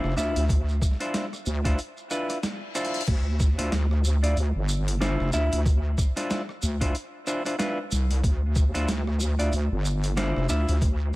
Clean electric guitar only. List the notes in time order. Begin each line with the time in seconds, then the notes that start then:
Already playing: D4 E4 F4 C5
0.17 D4 E4 F4 E5
1.00 D4 E4 F4 C5
1.65 D4 E4 F4 C5
2.11 D4 E4 F4 B4
2.75 D4 E4 F4 C5
3.58 D4 E4 F4 C5
4.23 D4 E4 F4 D5
5.01 D4 E4 F4 C5
5.33 D4 E4 F4 E5
6.16 D4 E4 F4 C5
6.81 D4 E4 F4 C5
7.27 D4 E4 F4 C5
7.45 D4 E4 F4 C5
7.59 D4 E4 F4 B4
8.74 D4 E4 F4 C5
9.39 D4 E4 F4 D5
10.17 D4 E4 F4 C5
10.49 D4 E4 F4 E5